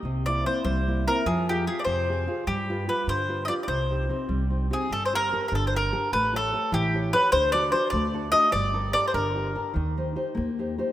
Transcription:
0.03 0.43 C2 medium
0.03 0.45 C3 medium
0.26 0.44 A#3 soft
0.26 0.45 C4 soft
0.26 0.46 E4 soft
0.26 0.44 D5 medium
0.45 0.79 A#3 soft
0.45 0.79 C4 soft
0.45 0.80 E4 soft
0.45 0.63 C5 medium
0.64 1.04 C2 medium
0.64 1.05 G3 medium
0.64 1.03 C5 medium
0.88 1.05 A#3 soft
0.88 1.06 C4 soft
0.88 1.06 E4 soft
1.07 1.22 A#3 soft
1.07 1.22 C4 soft
1.07 1.23 E4 soft
1.07 1.27 A#4 medium
1.26 1.65 F2 medium
1.26 1.66 F3 medium
1.26 1.47 G#4 medium
1.49 1.66 F4 soft
1.49 1.67 G4 medium
1.49 1.67 G4 soft
1.49 1.67 G#4 soft
1.67 2.01 F4 soft
1.67 2.01 G4 soft
1.67 1.81 G#4 medium
1.67 2.01 G#4 soft
1.79 1.84 D5 medium
1.84 2.26 F2 medium
1.84 2.27 C3 medium
1.84 2.42 C5 medium
2.09 2.26 F4 soft
2.09 2.26 G4 soft
2.09 2.27 G#4 soft
2.27 2.43 F4 soft
2.27 2.43 G4 soft
2.27 2.43 G#4 soft
2.47 2.86 G2 medium
2.47 2.87 G3 medium
2.47 2.90 G4 medium
2.70 2.87 F4 soft
2.70 2.87 G4 soft
2.70 2.87 B4 medium
2.88 3.21 F4 soft
2.88 3.21 G4 soft
2.88 3.21 B4 soft
2.88 3.08 B4 medium
3.07 3.47 G2 medium
3.07 3.48 D3 medium
3.07 3.42 C5 medium
3.29 3.47 F4 soft
3.29 3.48 G4 soft
3.29 3.48 B4 soft
3.45 3.64 F4 soft
3.45 3.53 D5 medium
3.45 3.48 D#5 medium
3.49 3.64 G4 soft
3.49 3.64 B4 soft
3.63 3.68 D5 soft
3.68 4.07 C2 medium
3.68 4.08 C3 medium
3.68 4.47 C5 medium
3.90 4.08 C4 soft
3.90 4.09 D#4 soft
3.90 4.09 G4 soft
4.09 4.43 C4 soft
4.09 4.43 D#4 soft
4.09 4.43 G4 soft
4.29 4.69 C2 medium
4.29 4.69 G3 medium
4.50 4.70 C4 soft
4.50 4.69 D#4 soft
4.50 4.70 G4 soft
4.70 4.86 C4 soft
4.70 4.86 D#4 soft
4.70 4.86 G4 soft
4.70 4.90 G#4 medium
4.89 5.31 G1 medium
4.89 5.30 G3 soft
4.89 5.05 A4 medium
5.05 5.13 C5 medium
5.13 5.31 G4 soft
5.13 5.32 A#4 soft
5.13 5.46 A#4 medium
5.32 5.66 G4 soft
5.32 5.66 A4 soft
5.32 5.66 A#4 medium
5.48 5.91 G1 medium
5.48 5.52 A#4 medium
5.52 5.92 D3 medium
5.52 5.67 A4 medium
5.67 5.74 C5 soft
5.74 5.91 G4 soft
5.74 5.92 A#4 soft
5.74 6.11 A#4 medium
5.92 6.08 G4 medium
5.92 6.08 A4 soft
5.92 6.08 A#4 medium
6.12 6.52 A1 medium
6.12 6.52 A3 medium
6.12 6.33 B4 medium
6.33 6.51 G4 soft
6.33 6.52 A4 soft
6.33 6.71 A4 medium
6.33 6.53 C#5 soft
6.53 6.86 G4 soft
6.53 6.86 A4 soft
6.53 6.86 C#5 soft
6.72 7.11 A1 loud
6.72 7.12 E3 medium
6.72 7.11 G4 medium
6.94 7.12 G4 soft
6.94 7.13 A4 soft
6.94 7.13 C#5 soft
7.13 7.29 G4 soft
7.13 7.29 A4 soft
7.13 7.31 B4 medium
7.13 7.29 C#5 medium
7.32 7.71 D2 medium
7.32 7.72 D3 medium
7.32 7.52 C5 medium
7.52 7.71 D4 medium
7.52 7.72 F#4 soft
7.52 7.72 A4 soft
7.52 7.71 D5 medium
7.72 8.06 D4 soft
7.72 8.06 F#4 soft
7.72 8.06 A4 soft
7.72 7.90 C5 medium
7.90 8.32 D2 medium
7.90 8.33 A3 medium
7.90 8.30 D5 medium
8.14 8.31 D4 soft
8.14 8.31 F#4 soft
8.14 8.32 A4 soft
8.32 8.48 D4 soft
8.32 8.48 F#4 soft
8.32 8.49 A4 medium
8.32 8.52 D#5 loud
8.52 8.93 G1 medium
8.52 8.93 G3 medium
8.52 8.91 D5 medium
8.73 8.92 G4 soft
8.73 8.92 A4 soft
8.73 8.93 A#4 soft
8.93 9.28 G4 soft
8.93 9.28 A4 soft
8.93 9.28 A#4 soft
8.93 9.06 D5 medium
9.07 9.14 C5 medium
9.14 9.54 G1 medium
9.14 9.55 D3 medium
9.14 9.72 A#4 medium
9.35 9.54 G4 soft
9.35 9.54 A#4 soft
9.55 9.71 G4 soft
9.55 9.71 A4 soft
9.55 9.72 A#4 medium
9.74 10.16 D#2 medium
9.74 10.15 D#3 medium
9.97 10.14 D#4 soft
9.97 10.15 G4 soft
9.97 10.15 C5 soft
10.16 10.50 D#4 soft
10.16 10.50 G4 soft
10.16 10.51 C5 medium
10.35 10.77 D#2 medium
10.35 10.77 A#3 medium
10.59 10.77 D#4 soft
10.59 10.77 G4 soft
10.59 10.78 C5 soft
10.78 10.92 D#4 soft
10.78 10.92 G4 soft
10.78 10.92 C5 medium

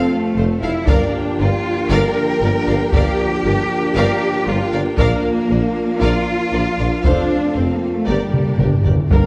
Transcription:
0.00 0.70 F3 medium
0.00 0.70 A3 medium
0.00 0.10 C4 medium
0.00 0.69 C4 medium
0.00 0.87 C4 medium
0.00 0.69 F4 medium
0.00 4.95 F4 medium
0.00 0.88 A4 medium
0.00 0.87 F5 medium
0.10 0.62 A3 medium
0.37 0.45 F1 medium
0.37 0.47 F1 medium
0.37 0.45 A4 medium
0.37 0.46 C5 medium
0.37 0.46 C5 soft
0.62 0.70 F1 soft
0.62 0.73 F1 soft
0.62 0.87 E4 medium
0.62 0.70 A4 medium
0.62 0.70 F5 medium
0.62 0.71 F5 medium
0.86 0.95 G1 medium
0.86 0.98 G1 medium
0.86 1.61 G2 medium
0.86 4.94 F3 medium
0.86 4.95 A#3 medium
0.86 4.94 D4 medium
0.86 1.39 D4 medium
0.86 7.06 D4 medium
0.86 4.95 G4 medium
0.86 1.12 A#4 medium
0.86 7.05 A#4 medium
0.86 1.12 D5 medium
0.86 1.12 F5 medium
0.86 5.00 G5 medium
0.86 taiko medium
1.38 1.49 G1 medium
1.38 1.47 G1 soft
1.38 1.91 F4 medium
1.38 1.48 A#4 soft
1.38 1.48 A#4 medium
1.38 1.49 D5 medium
1.90 2.00 G1 medium
1.90 1.98 G1 medium
1.90 2.14 A#4 medium
1.90 2.93 A#4 medium
1.90 2.14 D5 medium
1.90 2.15 F5 medium
2.41 2.50 G1 soft
2.41 2.52 G1 soft
2.41 2.49 A#4 medium
2.41 2.50 A#4 medium
2.41 2.51 D5 soft
2.67 2.76 G1 soft
2.67 2.78 G1 medium
2.67 2.75 A#4 medium
2.67 2.76 D5 medium
2.67 2.76 F5 medium
2.93 3.01 G1 medium
2.93 3.04 G1 medium
2.93 3.94 G4 medium
2.93 3.17 A#4 medium
2.93 3.18 D5 medium
2.93 3.18 F5 medium
2.93 taiko medium
3.45 3.55 G1 soft
3.45 3.53 G1 medium
3.45 3.53 A#4 medium
3.45 3.54 A#4 soft
3.45 3.54 D5 medium
3.95 4.06 G1 medium
3.95 4.04 G1 medium
3.95 4.46 G4 medium
3.95 4.20 A#4 medium
3.95 4.21 D5 medium
3.95 4.20 F5 medium
4.46 4.58 G1 medium
4.46 4.55 G1 soft
4.46 4.73 F4 medium
4.46 4.54 A#4 soft
4.46 4.56 A#4 medium
4.46 4.55 D5 soft
4.72 4.81 G1 soft
4.72 4.84 G1 soft
4.72 4.81 A#4 soft
4.72 4.82 D5 medium
4.72 4.80 F5 medium
4.97 5.06 A#1 medium
4.97 5.10 A#1 medium
4.97 8.03 F3 medium
4.97 6.87 A#3 medium
4.97 5.98 A#3 medium
4.97 7.00 D4 medium
4.97 8.06 F4 medium
4.97 8.03 F4 medium
4.97 5.22 A#4 medium
4.97 5.22 D5 medium
4.97 8.07 F5 medium
4.97 5.23 F5 medium
4.97 taiko medium
5.48 5.60 A#1 medium
5.48 5.58 A#1 soft
5.48 5.56 A#4 soft
5.48 5.57 A#4 soft
5.48 5.59 D5 soft
6.00 6.10 A#1 medium
6.00 6.12 A#1 medium
6.00 7.04 F4 medium
6.00 6.25 A#4 medium
6.00 6.25 D5 medium
6.00 6.25 F5 medium
6.52 6.61 A#1 soft
6.52 6.63 A#1 soft
6.52 6.61 A#4 medium
6.52 6.61 A#4 soft
6.52 6.60 D5 medium
6.78 6.89 A#1 soft
6.78 6.87 A#1 soft
6.78 6.86 A#4 soft
6.78 6.87 D5 soft
6.78 6.86 F5 soft
7.04 7.14 F1 medium
7.04 7.13 F1 medium
7.04 8.05 A3 medium
7.04 8.08 C4 medium
7.04 7.55 D4 medium
7.04 7.29 A4 medium
7.04 8.08 A4 medium
7.04 7.29 C5 medium
7.04 7.28 F5 medium
7.04 taiko medium
7.08 8.09 C4 medium
7.55 7.66 F1 soft
7.55 7.65 F1 soft
7.55 7.73 C4 medium
7.55 7.64 A4 soft
7.55 7.63 C5 soft
7.74 7.91 A#3 medium
7.91 8.08 A3 medium
8.05 8.17 G1 medium
8.05 8.16 G1 medium
8.05 8.13 G2 soft
8.05 8.82 D3 medium
8.05 8.59 G3 medium
8.05 8.83 A#3 medium
8.05 8.84 D4 medium
8.05 9.11 D4 medium
8.05 8.85 G4 medium
8.05 9.10 G4 medium
8.05 8.32 G4 medium
8.05 8.31 A#4 medium
8.05 9.10 A#4 medium
8.05 8.31 D5 medium
8.05 9.10 D5 medium
8.15 8.21 G2 soft
8.22 8.28 G2 soft
8.29 8.37 G2 soft
8.34 taiko mid medium
8.38 8.43 G2 soft
8.45 8.51 G2 soft
8.53 8.58 G2 soft
8.59 8.69 G1 soft
8.59 8.67 G1 soft
8.59 8.66 G2 soft
8.59 8.68 G4 soft
8.59 8.69 G4 soft
8.59 8.67 A#4 soft
8.59 taiko mid medium
8.67 8.73 G2 medium
8.74 8.80 G2 medium
8.81 8.95 G1 soft
8.81 8.88 G2 medium
8.81 8.93 A#4 soft
8.81 8.92 D5 soft
8.81 taiko low medium
8.85 8.93 G1 soft
8.85 8.96 G2 medium
8.85 8.93 G4 soft
8.97 9.04 G2 medium
9.11 9.21 G1 medium
9.11 9.19 G1 medium
9.11 9.19 G2 medium
9.11 9.26 A#3 medium
9.11 9.26 A#4 medium
9.11 9.26 D5 medium
9.11 9.26 F5 medium
9.11 9.26 G5 medium
9.11 taiko loud

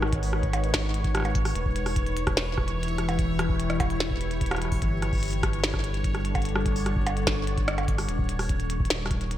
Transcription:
0.00 1.53 G#1 medium
0.00 1.55 G#3 medium
0.00 1.55 D#4 medium
0.00 1.56 A#4 medium
0.00 8.09 B4 medium
0.00 9.38 C#5 medium
0.00 1.55 F#5 medium
0.00 cross-stick medium
0.13 kick loud
0.13 closed hi-hat medium
0.23 open hi-hat medium
0.33 cross-stick medium
0.43 kick loud
0.43 closed hi-hat soft
0.53 closed hi-hat medium
0.53 percussion blips medium
0.64 closed hi-hat medium
0.74 kick loud
0.74 cross-stick medium
0.74 snare loud
0.74 closed hi-hat medium
0.94 closed hi-hat medium
1.04 kick loud
1.04 closed hi-hat medium
1.15 cross-stick medium
1.15 closed hi-hat medium
1.17 cross-stick medium
1.20 cross-stick medium
1.22 cross-stick soft
1.22 closed hi-hat soft
1.22 percussion blips medium
1.35 kick loud
1.35 closed hi-hat medium
1.45 cross-stick medium
1.45 open hi-hat medium
1.55 4.80 E1 medium
1.55 4.82 E3 medium
1.55 closed hi-hat medium
1.66 kick loud
1.76 closed hi-hat medium
1.86 6.13 E4 medium
1.86 cross-stick medium
1.86 open hi-hat medium
1.94 6.13 G4 medium
1.94 kick loud
1.94 closed hi-hat medium
2.06 closed hi-hat soft
2.17 closed hi-hat medium
2.27 kick loud
2.27 cross-stick medium
2.27 closed hi-hat medium
2.37 snare loud
2.37 closed hi-hat medium
2.58 kick loud
2.58 cross-stick soft
2.68 closed hi-hat medium
2.83 closed hi-hat medium
2.88 closed hi-hat soft
2.98 cross-stick soft
2.98 closed hi-hat medium
3.02 5.84 B5 medium
3.09 closed hi-hat medium
3.09 percussion blips medium
3.19 kick loud
3.19 closed hi-hat medium
3.39 cross-stick medium
3.39 closed hi-hat medium
3.49 kick loud
3.60 closed hi-hat medium
3.70 cross-stick medium
3.70 closed hi-hat soft
3.80 kick loud
3.80 closed hi-hat medium
3.80 percussion blips loud
3.90 closed hi-hat soft
4.00 snare loud
4.00 closed hi-hat medium
4.11 kick loud
4.21 closed hi-hat medium
4.31 closed hi-hat medium
4.41 kick loud
4.41 closed hi-hat medium
4.46 closed hi-hat medium
4.51 cross-stick medium
4.51 closed hi-hat soft
4.51 percussion blips medium
4.55 cross-stick medium
4.55 closed hi-hat soft
4.58 cross-stick soft
4.58 closed hi-hat medium
4.65 cross-stick soft
4.68 kick loud
4.68 cross-stick soft
4.68 open hi-hat medium
4.82 8.06 G1 medium
4.82 8.09 G3 medium
4.82 kick loud
4.82 closed hi-hat medium
5.02 8.09 D4 medium
5.02 cross-stick soft
5.02 closed hi-hat medium
5.09 8.09 A4 medium
5.09 kick loud
5.09 open hi-hat soft
5.15 open hi-hat soft
5.18 open hi-hat soft
5.20 closed hi-hat medium
5.20 open hi-hat soft
5.23 open hi-hat soft
5.25 open hi-hat soft
5.28 open hi-hat medium
5.30 closed hi-hat soft
5.30 open hi-hat medium
5.43 kick loud
5.43 cross-stick medium
5.43 closed hi-hat medium
5.53 closed hi-hat soft
5.64 snare loud
5.64 closed hi-hat medium
5.74 kick loud
5.74 cross-stick medium
5.84 closed hi-hat medium
5.94 closed hi-hat medium
6.04 kick loud
6.04 closed hi-hat medium
6.15 cross-stick soft
6.15 closed hi-hat soft
6.22 8.09 F#5 medium
6.22 closed hi-hat medium
6.35 kick loud
6.35 closed hi-hat medium
6.35 percussion blips medium
6.42 closed hi-hat soft
6.45 closed hi-hat medium
6.49 closed hi-hat soft
6.56 cross-stick medium
6.66 kick loud
6.66 closed hi-hat medium
6.76 open hi-hat medium
6.86 cross-stick medium
6.86 closed hi-hat medium
6.96 kick loud
7.07 closed hi-hat medium
7.07 percussion blips loud
7.17 closed hi-hat soft
7.27 kick loud
7.27 cross-stick medium
7.27 snare loud
7.27 closed hi-hat medium
7.47 closed hi-hat medium
7.58 kick loud
7.58 closed hi-hat medium
7.68 cross-stick medium
7.68 closed hi-hat medium
7.78 closed hi-hat soft
7.78 percussion blips medium
7.88 kick loud
7.88 closed hi-hat medium
7.98 cross-stick medium
7.98 open hi-hat medium
8.08 9.38 D#1 medium
8.08 9.38 D#3 medium
8.08 closed hi-hat medium
8.19 kick loud
8.29 closed hi-hat medium
8.38 9.38 A#4 medium
8.38 cross-stick medium
8.38 open hi-hat medium
8.44 9.38 A#5 medium
8.49 9.38 D#4 medium
8.49 9.38 G4 medium
8.49 kick loud
8.49 closed hi-hat medium
8.60 closed hi-hat soft
8.70 closed hi-hat medium
8.80 kick loud
8.85 closed hi-hat medium
8.90 snare loud
8.90 closed hi-hat medium
9.06 cross-stick medium
9.11 kick loud
9.11 closed hi-hat medium
9.21 closed hi-hat medium
9.31 closed hi-hat medium

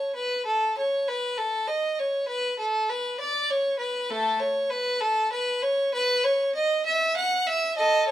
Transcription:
0.00 0.15 C#5 medium
0.15 0.45 B4 medium
0.45 0.76 A4 medium
0.78 1.07 C#5 medium
1.08 1.38 B4 medium
1.38 1.68 A4 medium
1.68 1.98 D#5 medium
1.99 2.29 C#5 medium
2.28 2.58 B4 medium
2.59 2.89 A4 medium
2.90 3.20 B4 medium
3.20 3.50 D5 medium
3.50 3.80 C#5 medium
3.79 4.09 B4 medium
4.10 4.39 A3 medium
4.10 4.41 A4 medium
4.40 4.70 C#5 medium
4.70 5.01 B4 medium
5.01 5.31 A4 medium
5.32 5.62 B4 medium
5.62 5.93 C#5 medium
5.94 6.24 B4 loud
6.24 6.55 C#5 medium
6.55 6.85 D#5 medium
6.86 7.15 E5 loud
7.17 7.46 F#5 medium
7.47 7.78 E5 loud
7.77 8.06 A4 medium
7.77 8.08 D#5 medium
8.08 8.11 C#5 medium

